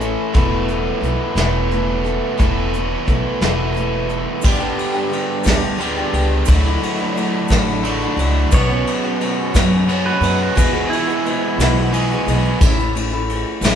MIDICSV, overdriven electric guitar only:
0, 0, Header, 1, 2, 480
1, 0, Start_track
1, 0, Tempo, 680272
1, 241, Time_signature, 6, 3, 24, 8
1, 9703, End_track
2, 0, Start_track
2, 0, Title_t, "Overdriven electric guitar"
2, 0, Program_c, 0, 29
2, 0, Note_on_c, 0, 45, 65
2, 0, Note_on_c, 0, 52, 62
2, 0, Note_on_c, 0, 57, 78
2, 0, Note_on_c, 0, 61, 78
2, 0, Note_on_c, 0, 64, 77
2, 226, Note_off_c, 0, 61, 0
2, 234, Note_off_c, 0, 45, 0
2, 236, Note_on_c, 0, 40, 89
2, 238, Note_off_c, 0, 52, 0
2, 240, Note_on_c, 0, 52, 83
2, 241, Note_on_c, 0, 47, 81
2, 242, Note_off_c, 0, 57, 0
2, 245, Note_on_c, 0, 57, 96
2, 247, Note_on_c, 0, 59, 96
2, 253, Note_off_c, 0, 64, 0
2, 256, Note_on_c, 0, 64, 94
2, 948, Note_off_c, 0, 47, 0
2, 962, Note_off_c, 0, 64, 0
2, 964, Note_on_c, 0, 64, 78
2, 966, Note_off_c, 0, 59, 0
2, 969, Note_on_c, 0, 59, 76
2, 972, Note_off_c, 0, 57, 0
2, 974, Note_on_c, 0, 57, 79
2, 976, Note_off_c, 0, 52, 0
2, 979, Note_on_c, 0, 52, 70
2, 982, Note_on_c, 0, 47, 67
2, 984, Note_off_c, 0, 40, 0
2, 987, Note_on_c, 0, 40, 60
2, 1670, Note_off_c, 0, 64, 0
2, 1674, Note_off_c, 0, 47, 0
2, 1675, Note_off_c, 0, 40, 0
2, 1675, Note_off_c, 0, 57, 0
2, 1677, Note_off_c, 0, 52, 0
2, 1683, Note_on_c, 0, 40, 77
2, 1683, Note_on_c, 0, 47, 86
2, 1687, Note_on_c, 0, 52, 83
2, 1693, Note_on_c, 0, 57, 83
2, 1695, Note_off_c, 0, 59, 0
2, 1697, Note_on_c, 0, 64, 93
2, 1698, Note_on_c, 0, 59, 88
2, 2390, Note_off_c, 0, 47, 0
2, 2391, Note_off_c, 0, 40, 0
2, 2392, Note_off_c, 0, 52, 0
2, 2396, Note_off_c, 0, 57, 0
2, 2398, Note_off_c, 0, 59, 0
2, 2398, Note_off_c, 0, 64, 0
2, 2410, Note_on_c, 0, 64, 71
2, 2413, Note_on_c, 0, 59, 76
2, 2414, Note_on_c, 0, 57, 67
2, 2424, Note_on_c, 0, 52, 67
2, 2427, Note_on_c, 0, 47, 63
2, 2428, Note_on_c, 0, 40, 62
2, 3115, Note_off_c, 0, 64, 0
2, 3116, Note_off_c, 0, 59, 0
2, 3117, Note_off_c, 0, 57, 0
2, 3122, Note_off_c, 0, 52, 0
2, 3123, Note_off_c, 0, 47, 0
2, 3124, Note_off_c, 0, 40, 0
2, 3133, Note_on_c, 0, 43, 84
2, 3139, Note_on_c, 0, 50, 90
2, 3143, Note_on_c, 0, 55, 85
2, 3146, Note_on_c, 0, 59, 86
2, 3149, Note_on_c, 0, 62, 86
2, 3152, Note_on_c, 0, 67, 91
2, 4077, Note_off_c, 0, 43, 0
2, 4080, Note_off_c, 0, 50, 0
2, 4083, Note_off_c, 0, 55, 0
2, 4084, Note_off_c, 0, 59, 0
2, 4085, Note_off_c, 0, 62, 0
2, 4086, Note_on_c, 0, 43, 72
2, 4087, Note_off_c, 0, 67, 0
2, 4090, Note_on_c, 0, 50, 68
2, 4095, Note_on_c, 0, 55, 74
2, 4099, Note_on_c, 0, 59, 78
2, 4103, Note_on_c, 0, 62, 84
2, 4103, Note_on_c, 0, 67, 80
2, 4554, Note_off_c, 0, 43, 0
2, 4556, Note_off_c, 0, 50, 0
2, 4558, Note_off_c, 0, 55, 0
2, 4560, Note_off_c, 0, 59, 0
2, 4562, Note_off_c, 0, 62, 0
2, 4562, Note_off_c, 0, 67, 0
2, 4567, Note_on_c, 0, 50, 89
2, 4576, Note_on_c, 0, 54, 83
2, 4577, Note_on_c, 0, 57, 90
2, 4580, Note_on_c, 0, 62, 83
2, 4587, Note_on_c, 0, 66, 98
2, 5515, Note_off_c, 0, 50, 0
2, 5520, Note_off_c, 0, 57, 0
2, 5522, Note_off_c, 0, 62, 0
2, 5524, Note_on_c, 0, 50, 84
2, 5533, Note_off_c, 0, 54, 0
2, 5536, Note_on_c, 0, 54, 74
2, 5540, Note_on_c, 0, 57, 86
2, 5541, Note_on_c, 0, 62, 83
2, 5544, Note_off_c, 0, 66, 0
2, 5547, Note_on_c, 0, 66, 79
2, 5993, Note_off_c, 0, 50, 0
2, 6001, Note_off_c, 0, 57, 0
2, 6002, Note_off_c, 0, 62, 0
2, 6014, Note_off_c, 0, 54, 0
2, 6014, Note_on_c, 0, 47, 94
2, 6017, Note_on_c, 0, 54, 88
2, 6023, Note_on_c, 0, 59, 93
2, 6027, Note_off_c, 0, 66, 0
2, 6028, Note_on_c, 0, 61, 99
2, 6030, Note_on_c, 0, 66, 91
2, 6958, Note_off_c, 0, 47, 0
2, 6959, Note_off_c, 0, 54, 0
2, 6962, Note_off_c, 0, 59, 0
2, 6965, Note_off_c, 0, 61, 0
2, 6966, Note_off_c, 0, 66, 0
2, 6971, Note_on_c, 0, 47, 74
2, 6976, Note_on_c, 0, 54, 77
2, 6984, Note_on_c, 0, 59, 77
2, 6992, Note_on_c, 0, 61, 82
2, 6992, Note_on_c, 0, 66, 76
2, 7436, Note_off_c, 0, 47, 0
2, 7439, Note_off_c, 0, 54, 0
2, 7443, Note_off_c, 0, 59, 0
2, 7447, Note_off_c, 0, 61, 0
2, 7447, Note_off_c, 0, 66, 0
2, 7453, Note_on_c, 0, 40, 91
2, 7460, Note_on_c, 0, 47, 82
2, 7461, Note_on_c, 0, 52, 87
2, 7462, Note_on_c, 0, 56, 95
2, 7469, Note_on_c, 0, 59, 99
2, 7472, Note_on_c, 0, 68, 112
2, 8396, Note_off_c, 0, 40, 0
2, 8399, Note_off_c, 0, 47, 0
2, 8400, Note_off_c, 0, 52, 0
2, 8400, Note_off_c, 0, 56, 0
2, 8404, Note_off_c, 0, 59, 0
2, 8404, Note_on_c, 0, 40, 83
2, 8406, Note_off_c, 0, 68, 0
2, 8410, Note_on_c, 0, 47, 80
2, 8416, Note_on_c, 0, 52, 81
2, 8419, Note_on_c, 0, 56, 88
2, 8421, Note_on_c, 0, 59, 88
2, 8423, Note_on_c, 0, 68, 82
2, 8871, Note_off_c, 0, 40, 0
2, 8874, Note_off_c, 0, 47, 0
2, 8877, Note_off_c, 0, 52, 0
2, 8878, Note_off_c, 0, 56, 0
2, 8879, Note_off_c, 0, 59, 0
2, 8880, Note_off_c, 0, 68, 0
2, 9703, End_track
0, 0, End_of_file